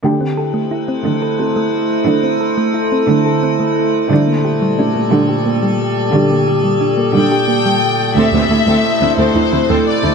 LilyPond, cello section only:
\new Staff \with { instrumentName = "Cello section" } { \clef bass \time 6/8 \key a \phrygian \tempo 4. = 59 d4~ d16 r16 d4~ d16 r16 | d4~ d16 r16 d4~ d16 r16 | d4~ d16 r16 d4~ d16 r16 | d4~ d16 r16 d4~ d16 r16 |
d,16 d,16 d,16 d,16 r16 d,16 d,16 d,16 d,16 d,16 r16 d,16 | }